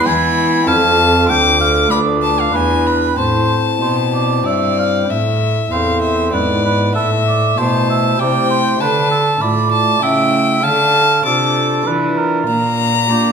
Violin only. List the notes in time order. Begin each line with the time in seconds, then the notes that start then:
0.06 B5
0.67 A5
1.29 D6
1.91 B5
2.23 A5
2.40 F5
2.55 G#5
2.87 B5
3.18 A5
4.46 D5
5.10 E5
5.72 F5
6.02 E5
6.33 D5
6.95 E5
7.57 A5
8.19 G5
8.80 A5
9.41 B5
9.72 A5
10.02 G5
10.63 A5
11.25 D6
12.47 A#5